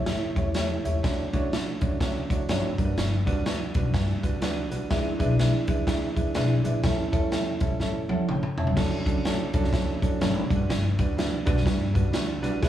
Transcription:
0.06 A2 A3 E4 G4 C#5, snare, closed hi-hat
0.36 E2 A3 E4 G4 C#5, kick, closed hi-hat
0.54 A3 E4 G4 C#5, snare, closed hi-hat
0.84 D#2 A3 E4 G4 C#5, closed hi-hat
1.03 D2 A3 D4 F#4 C#5, kick, snare, closed hi-hat
1.33 A1 A3 D4 F#4 C#5, kick, closed hi-hat
1.52 A3 D4 F#4 D5, snare, closed hi-hat
1.80 C#2 A3 D4 F#4 C#5, kick, closed hi-hat
1.91 C#2
2.00 A3 D4 F#4 C#5, kick, snare, closed hi-hat
2.30 D2 A3 D4 F#4 C#5, kick, closed hi-hat
2.49 G#1 A3 D4 F#4 C#5, snare, closed hi-hat
2.78 G1 G3 D4 F#4 A#4, kick, closed hi-hat
2.84 B4
2.98 G1, snare, closed hi-hat
3.26 D2 G3 D4 F#4 B4, kick, closed hi-hat
3.45 G3 D4 F#4 B4, snare, closed hi-hat
3.74 B1 G3 D4 F#4 B4, kick, closed hi-hat
3.85 F#2
3.93 G2 G3 D4 F#4 B4, kick, snare, closed hi-hat
4.22 D2 G3 D4 F#4 B4, kick, closed hi-hat
4.41 G3 D4 F#4 B4, snare, closed hi-hat
4.70 A1 G3 D4 F#4 B4, closed hi-hat
4.90 G#1 G#3 D4 E4 B4, kick, snare, closed hi-hat
5.19 B1 G#3 D4 E4 B4, kick, closed hi-hat
5.38 G#3 D4 E4 B4, snare, closed hi-hat
5.68 D2 G#3 D4 E4 B4, kick, closed hi-hat
5.78 D2
5.87 G#3 D4 E4 B4, kick, snare, closed hi-hat
6.15 E2 G#3 D4 E4 B4, kick, closed hi-hat
6.35 B1 G#3 D4 E4 B4, snare, closed hi-hat
6.64 A#1 G#3 D4 E4 B4, closed hi-hat
6.83 A1 G3 C#4 E4 A4, kick, snare, closed hi-hat
7.12 E2 G3 C#4 E4 A4, kick, closed hi-hat
7.31 G3 C#4 E4 A4, snare, closed hi-hat
7.60 C#2 G3 C#4 E4 A4, kick, closed hi-hat
7.70 A1
7.79 A2 G3 C#4 E4 A4, snare
8.09 E2 G3 C#4 E4 A4 F#5, high tom
8.28 A1 A4 C#5 G5, mid tom
8.43 mid tom
8.57 B1 C#5 E5 A5, floor tom
8.67 A1, floor tom
8.76 D2 F#3 C#4 D4 A4, kick, snare, crash
9.05 A1 F#3 C#4 D4 A4, kick, closed hi-hat
9.24 F#3 C#4 D4 A4, snare, closed hi-hat
9.53 C#2 F#3 C#4 D4 A4, kick, closed hi-hat
9.64 C#2, snare
9.73 F#3 C#4 D4 A4, kick, snare, closed hi-hat
10.02 D2 F#3 C#4 D4 A4, kick, closed hi-hat
10.20 G#1 F#3 C#4 D4 A4, snare, closed hi-hat
10.49 G1 G3 D4 F#4 A4, kick, closed hi-hat
10.56 B4
10.69 G1, snare, closed hi-hat
10.99 D2 G3 D4 F#4 B4, kick, closed hi-hat
11.17 G3 D4 F#4 B4, snare, closed hi-hat
11.45 B1 G3 D4 F#4 B4, kick, closed hi-hat
11.56 F#2, snare
11.65 G2 G3 D4 F#4 B4, kick, snare, closed hi-hat
11.93 D2 G3 D4 F#4 B4, kick, closed hi-hat
12.12 G3 D4 F#4 B4, snare, closed hi-hat
12.42 A1 G3 D4 F#4 B4, closed hi-hat
12.62 G#1 G#3 D4 E4 B4, kick, snare, closed hi-hat

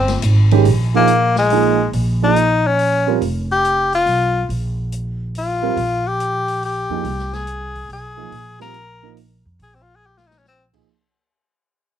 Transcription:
Already playing: G1 C4
0.08 snare, ride
0.22 G#1, hi-hat pedal, ride
0.51 D#3 G#3 C#4 G4, ride
0.65 A#1, open hi-hat
0.94 F3 A#3 D#4 G#4
1.07 closed hi-hat
1.36 G#3, snare
1.50 F3 A#3 D#4 G#4, open hi-hat
1.93 A#1, open hi-hat
2.22 F3 A#3 D#4 G#4
2.36 closed hi-hat
2.67 C#4
2.79 open hi-hat
3.07 G3 C4 F4 A#4
3.21 F1, open hi-hat
3.52 G4
3.65 closed hi-hat
3.93 F4, open hi-hat
4.06 B1, open hi-hat
4.49 A#1, open hi-hat
4.92 closed hi-hat
5.35 F4, open hi-hat
5.62 G3 C4 F4 A#4
5.76 A#1, open hi-hat
6.07 G4
6.20 closed hi-hat
6.48 open hi-hat
6.63 G4, open hi-hat
6.89 F2 F3 A#3 D#4 G#4
7.04 C2, open hi-hat
7.19 snare
7.33 G#4, snare
7.47 closed hi-hat
7.75 kick, open hi-hat
7.89 B1, open hi-hat
7.93 G#4
8.17 F3 A#3 D#4 G#4
8.31 A#1, open hi-hat
8.59 G3 C4 F4 A#4, snare
8.74 closed hi-hat
9.02 F3 A#3 D#4 A#4
9.17 open hi-hat
9.45 F2
9.59 A#1 G#4, open hi-hat
9.75 C4
9.82 F4
9.96 G#4
10.06 G4
10.17 F4, snare
10.27 D#4
10.31 snare
10.38 C#4
10.45 C4, snare
10.73 F3 A#3 D#4 G#4, kick, crash

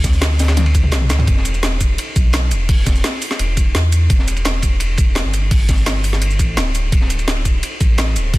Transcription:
Already playing: D2
0.04 kick, snare, closed hi-hat, ride, shaker
0.13 shaker
0.21 snare, closed hi-hat, ride
0.39 snare, open hi-hat, ride, shaker
0.48 snare, ride
0.57 snare, closed hi-hat, high tom, ride
0.66 ride
0.75 kick, closed hi-hat, ride, shaker
0.84 mid tom
0.92 B1, snare, closed hi-hat, ride
1.01 snare, mid tom
1.09 D2, snare, closed hi-hat, ride, shaker
1.19 snare, mid tom, ride
1.27 E1, kick, closed hi-hat, ride
1.37 snare
1.45 closed hi-hat, ride, shaker
1.54 ride, shaker
1.63 snare, closed hi-hat, ride
1.72 ride
1.81 kick, closed hi-hat, ride, shaker
1.98 closed hi-hat, ride
2.16 B1, kick, closed hi-hat, ride, shaker
2.33 snare, closed hi-hat, ride
2.43 snare
2.51 E1, closed hi-hat, ride, shaker
2.69 kick, closed hi-hat, open hi-hat
2.86 kick, snare, closed hi-hat, ride, shaker
2.95 shaker
3.04 snare, closed hi-hat, ride
3.22 open hi-hat, ride, shaker
3.31 snare
3.39 E1, closed hi-hat, ride
3.57 kick, closed hi-hat, ride, shaker
3.75 E2, snare, closed hi-hat
3.92 closed hi-hat, ride, shaker
4.10 E1, kick, closed hi-hat, ride
4.19 snare
4.28 closed hi-hat, ride, shaker
4.36 ride, shaker
4.45 snare, closed hi-hat, ride
4.54 ride
4.62 kick, closed hi-hat, ride, shaker
4.80 closed hi-hat, ride
4.97 E1, kick, closed hi-hat, ride, shaker
5.15 snare, closed hi-hat, ride
5.24 G1, snare
5.34 closed hi-hat, ride, shaker
5.51 kick, closed hi-hat, open hi-hat
5.69 kick, snare, closed hi-hat, ride, shaker
5.78 shaker
5.86 snare, closed hi-hat, ride
6.04 open hi-hat, ride, shaker
6.13 snare
6.22 closed hi-hat, ride
6.31 shaker
6.39 A1, kick, closed hi-hat, ride, shaker
6.57 D1, snare, closed hi-hat, ride
6.65 snare
6.75 closed hi-hat, ride, shaker
6.92 D1, kick, closed hi-hat, ride
7.01 snare
7.10 closed hi-hat, ride, shaker
7.19 ride, shaker
7.28 snare, closed hi-hat, ride
7.36 ride
7.45 kick, closed hi-hat, ride, shaker
7.63 closed hi-hat, ride
7.80 A1, kick, closed hi-hat, ride, shaker
7.98 snare, closed hi-hat, ride
8.07 snare
8.16 D1, closed hi-hat, ride, shaker
8.34 kick, closed hi-hat, open hi-hat

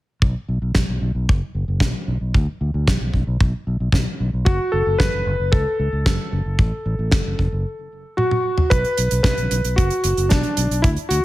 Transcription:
0.22 B1, kick
0.48 B1
0.62 B1
0.75 B1, kick, snare
0.88 B1
1.02 B1
1.15 B1
1.29 F#1, kick
1.55 F#1
1.68 F#1
1.80 B1, kick, snare
2.08 B1
2.21 B1
2.34 D2, kick
2.61 D2
2.74 D2
2.87 B1, kick, snare
3.01 B1
3.14 B1, kick
3.27 B1
3.41 B1, kick
3.67 B1
3.80 B1
3.92 B1, kick, snare
4.20 B1
4.33 B1
4.45 F#1 F#4, kick
4.72 F#1 A4
4.86 F#1
4.98 F#1 B4, kick, snare
5.13 F#1
5.26 F#1
5.39 F#1
5.52 C#2 A4, kick
5.79 C#2
5.92 C#2
6.06 F#1, kick, snare
6.32 F#1
6.46 F#1
6.59 A1, kick
6.85 A1
6.99 A1
7.11 F#1, kick, snare
7.26 F#1
7.39 F#1, kick
7.52 F#1
8.17 F#4, high tom
8.31 high tom
8.58 mid tom
8.70 B1 B4, kick, closed hi-hat
8.85 closed hi-hat
8.97 B1, closed hi-hat
9.11 B1, closed hi-hat
9.23 B1 B4, kick, snare, closed hi-hat
9.38 B1, closed hi-hat
9.51 B1, closed hi-hat
9.64 B1, closed hi-hat
9.76 F#1 F#4, kick, closed hi-hat
9.90 closed hi-hat
10.04 F#1, closed hi-hat
10.17 F#1, closed hi-hat
10.29 B1 D4, kick, snare, closed hi-hat
10.43 closed hi-hat
10.57 B1, closed hi-hat
10.71 B1, closed hi-hat
10.82 D2 E4, kick, closed hi-hat
10.96 closed hi-hat
11.09 D2 F#4, closed hi-hat

